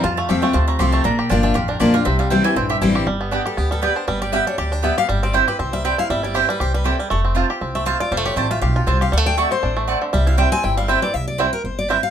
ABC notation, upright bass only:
X:1
M:4/4
L:1/8
Q:"Swing" 1/4=238
K:C
V:1 name="Upright bass" clef=bass
F,,2 E,,2 D,,2 C,,2 | _B,,,2 G,,,2 A,,,2 B,,,2 | C,,4 _B,,,2 A,,,2 | G,,,4 D,,4 |
G,,,4 D,,4 | G,,,4 C,,4 | G,,,4 C,,4 | F,,,4 C,,4 |
F,,,2 A,,,2 B,,,2 C,,2 | D,,4 A,,,4 | C,,4 G,,,4 | C,,4 G,,,4 |]